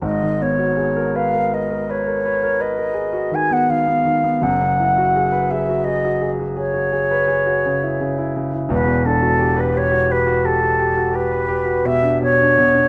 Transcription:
<<
  \new Staff \with { instrumentName = "Flute" } { \time 12/8 \key fis \major \tempo 4. = 56 dis''8 cis''4 eis''8 dis''8 cis''4 dis''4 gis''16 fis''16 eis''4 | fis''4. e''8 dis''8. r16 cis''2~ cis''8 r8 | b'8 a'8. b'16 cis''8 b'8 a'4 b'4 e''8 cis''4 | }
  \new Staff \with { instrumentName = "Grand piano" } { \time 12/8 \key fis \major <gis,, gis,>16 dis16 b16 fis'16 gis'16 ais'16 b'16 ais'16 b'16 ais'16 b'16 ais'16 b'16 ais'16 b'16 ais'16 gis'16 fis'16 dis16 b16 dis16 b16 dis16 b16 | <fis,, fis,>16 cis16 e'16 fis'16 gis'16 b'16 gis'16 fis'16 gis'16 fis'16 gis'16 fis'16 gis'16 fis'16 gis'16 b'16 gis'16 fis'16 cis16 e'16 cis16 e'16 cis16 e'16 | <e,, e,>16 b,16 d'16 fis'16 g'16 b'16 g'16 fis'16 g'16 fis'16 g'16 fis'16 g'16 fis'16 g'16 b'16 g'16 fis'16 b,16 d'16 b,16 d'16 b,16 d'16 | }
>>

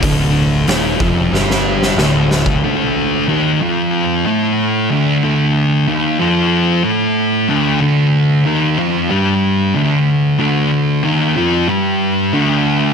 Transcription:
<<
  \new Staff \with { instrumentName = "Distorted electric guitar" } { \clef bass \time 4/4 \key d \minor \tempo 4 = 93 <d, d>4 <ees, ees>8 <f, f>8 <g, g>4 <d, d>4 | <d, d>4 <ees, ees>8 <f, f>4 <a, a>4 <d, d>8 | <d, d>4 <ees, ees>8 <f, f>4 <a, a>4 <d, d>8 | <d, d>4 <ees, ees>8 <f, f>8 <g, g>4 <d, d>4 |
<d, d>4 <ees, ees>8 <f, f>8 <g, g>4 <d, d>4 | }
  \new Staff \with { instrumentName = "Distorted electric guitar" } { \clef bass \time 4/4 \key d \minor <d, d>4 <ees, ees>8 <f, f>8 <g, g>4 <d, d>4 | <d, d>4 <ees, ees>8 <f, f>4 <a, a>4 <d, d>8 | <d, d>4 <ees, ees>8 <f, f>4 <a, a>4 <d, d>8 | <d, d>4 <ees, ees>8 <f, f>8 <g, g>4 <d, d>4 |
<d, d>4 <ees, ees>8 <f, f>8 <g, g>4 <d, d>4 | }
  \new Staff \with { instrumentName = "Fingered electric bass" } { \clef bass \time 4/4 \key d \minor d,,4 ees,,8 f,,8 g,,4 d,,4 | r1 | r1 | r1 |
r1 | }
  \new DrumStaff \with { instrumentName = "Drums" } \drummode { \time 4/4 <hho bd>4 <hho sn>8 bd8 sn16 sn8 sn16 sn8 sn16 bd16 | r4 r4 r4 r4 | r4 r4 r4 r4 | r4 r4 r4 r4 |
r4 r4 r4 r4 | }
>>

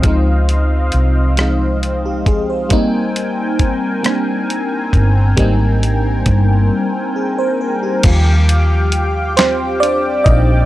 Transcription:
<<
  \new Staff \with { instrumentName = "Analog synth pad" } { \time 6/8 \key ees \major \tempo 4. = 45 <c' c'' ees'' f''>2. | <c' bes' g'' aes''>2.~ | <c' bes' g'' aes''>2. | <g' f'' g'' d'''>2. | }
  \new Staff \with { instrumentName = "FM electric piano" } { \time 6/8 \key ees \major r2 r16 g'16 aes'16 c''16~ | c''16 r2 r8. | r2 aes'16 c''16 bes'16 g'16~ | g'16 r4 r16 <c' c''>8 <d' d''>8 <ees' ees''>8 | }
  \new Staff \with { instrumentName = "FM electric piano" } { \time 6/8 \key ees \major <f aes c' ees'>4 r8 <f aes c' ees'>4 r8 | <g bes c' ees'>4 r8 <g bes c' d'>4 r8 | <g bes c' ees'>4 r2 | <f g f'>2. | }
  \new Staff \with { instrumentName = "Fingered electric bass" } { \clef bass \time 6/8 \key ees \major des,4 c,2 | aes,,2~ aes,,8 g,,8 | aes,,4 g,,8 r4. | ees,2~ ees,8 bes,,8 | }
  \new DrumStaff \with { instrumentName = "Drums" } \drummode { \time 6/8 <hh bd>8 hh8 hh8 <hh ss>8 hh8 <hh bd>8 | <hh bd>8 hh8 <hh bd>8 <hh ss>8 hh8 <hh bd>8 | <hh bd>8 hh8 <hh bd>8 r4. | <cymc hh bd>8 hh8 hh8 <hh sn>8 hh8 <hh bd>8 | }
>>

